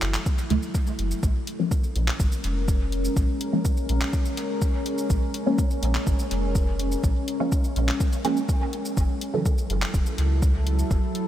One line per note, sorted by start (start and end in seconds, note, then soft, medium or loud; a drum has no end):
0.00 0.17 F#1 medium
0.00 1.19 F#3 medium
0.00 1.19 E4 medium
0.00 1.19 A4 medium
0.00 clap medium
0.00 closed hi-hat medium
0.14 clap medium
0.14 shaker soft
0.26 kick loud
0.26 shaker medium
0.38 closed hi-hat soft
0.38 shaker soft
0.50 0.58 C#2 loud
0.50 0.66 C#3 medium
0.50 0.66 E3 medium
0.50 0.66 F#3 medium
0.50 0.66 A3 loud
0.50 closed hi-hat medium
0.63 shaker soft
0.75 kick loud
0.75 shaker medium
0.87 shaker soft
0.99 1.13 F#1 medium
0.99 closed hi-hat medium
1.11 shaker soft
1.23 1.30 A#1 medium
1.23 8.93 G#3 medium
1.23 8.93 C#4 medium
1.23 8.93 A#4 medium
1.23 kick loud
1.23 shaker medium
1.47 closed hi-hat medium
1.59 1.75 F3 medium
1.59 1.75 G#3 medium
1.59 1.75 A#3 medium
1.59 1.75 C#4 medium
1.71 kick loud
1.71 shaker medium
1.84 shaker soft
1.96 2.10 A#1 loud
1.96 closed hi-hat medium
2.08 clap medium
2.20 2.27 G#1 medium
2.20 kick loud
2.20 shaker medium
2.32 shaker soft
2.44 3.09 F1 medium
2.44 closed hi-hat medium
2.68 kick loud
2.68 shaker medium
2.92 closed hi-hat medium
3.05 shaker soft
3.17 3.24 A#1 loud
3.17 kick loud
3.17 shaker medium
3.41 closed hi-hat medium
3.53 3.69 F3 medium
3.53 3.69 G#3 medium
3.53 3.69 A#3 medium
3.53 3.69 C#4 medium
3.65 kick loud
3.65 shaker medium
3.77 shaker soft
3.89 4.04 A#1 medium
3.89 closed hi-hat medium
4.01 clap medium
4.13 kick loud
4.13 shaker medium
4.25 shaker soft
4.37 closed hi-hat medium
4.62 kick loud
4.62 shaker medium
4.86 closed hi-hat medium
4.98 shaker soft
5.10 5.17 A#1 medium
5.10 kick loud
5.10 shaker medium
5.34 closed hi-hat medium
5.46 5.62 F3 medium
5.46 5.62 G#3 medium
5.46 5.62 A#3 medium
5.46 5.62 C#4 medium
5.58 kick loud
5.58 shaker medium
5.71 shaker soft
5.83 5.97 A#1 loud
5.83 closed hi-hat medium
5.95 clap medium
6.07 6.14 G#1 medium
6.07 kick loud
6.07 shaker medium
6.19 shaker soft
6.31 6.96 F1 medium
6.31 closed hi-hat medium
6.55 kick loud
6.55 shaker medium
6.79 closed hi-hat medium
6.92 shaker soft
7.04 7.11 A#1 loud
7.04 kick loud
7.04 shaker medium
7.28 closed hi-hat medium
7.40 7.56 F3 medium
7.40 7.56 G#3 medium
7.40 7.56 A#3 medium
7.40 7.56 C#4 medium
7.52 kick loud
7.52 shaker medium
7.64 shaker soft
7.76 7.91 A#1 medium
7.76 closed hi-hat medium
7.88 clap medium
8.00 kick loud
8.00 shaker medium
8.13 closed hi-hat soft
8.13 shaker soft
8.25 8.41 F3 medium
8.25 8.41 G#3 medium
8.25 8.41 A#3 medium
8.25 8.41 C#4 loud
8.25 closed hi-hat medium
8.37 shaker soft
8.49 kick loud
8.49 shaker medium
8.73 closed hi-hat medium
8.85 shaker soft
8.97 9.05 F#1 loud
8.97 11.28 F#3 medium
8.97 11.28 E4 medium
8.97 11.28 A4 medium
8.97 kick loud
8.97 shaker medium
9.21 closed hi-hat medium
9.34 9.49 C#3 medium
9.34 9.49 E3 medium
9.34 9.49 F#3 medium
9.34 9.49 A3 medium
9.46 kick loud
9.46 shaker medium
9.58 shaker soft
9.70 9.84 F#1 medium
9.70 closed hi-hat medium
9.82 clap medium
9.94 10.01 E1 medium
9.94 kick loud
9.94 shaker medium
10.06 shaker soft
10.18 10.83 C#2 medium
10.18 closed hi-hat medium
10.42 kick loud
10.42 shaker medium
10.67 closed hi-hat medium
10.79 shaker soft
10.91 10.98 F#1 loud
10.91 kick loud
10.91 shaker medium
11.15 closed hi-hat medium